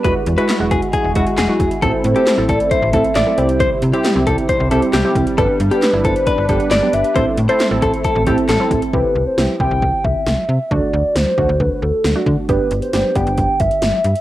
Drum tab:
HH |x-xxx-xxx-xxx-xx|x-xxx-xxx-xxx-xx|x-xxx-xxx-xxx-xx|x-xxx-xxx-xxx-xx|
CP |----x-------x---|----x-------x---|----x-------x---|----x-------x---|
SD |----o-------o---|----o-------o---|----o-------o---|----o-------o---|
BD |o-----o-o-o---o-|o-----o-o-o-----|o-----o-o-----o-|o-----o-o-o-----|

HH |x-xxx-xxx-xxx-xx|----------------|----------------|x-xxx-xxx-xxx-xx|
CP |----x-------x---|----------------|----------------|----------------|
SD |----o-------o---|----o-------o---|----o-------o---|----o-------o---|
BD |o-----o-o-o---o-|o-----o-o-o-----|o-----o-o-----o-|o-----o-o-o-----|